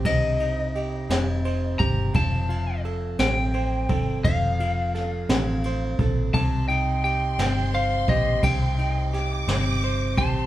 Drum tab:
RD |xxxxxx|xxxxxx|xxxxxx|xxxxxx|
SD |---o--|---o--|--oo--|---o--|
BD |o----o|o----o|o----o|o----o|

RD |xxxxxx|
SD |--oo--|
BD |o----o|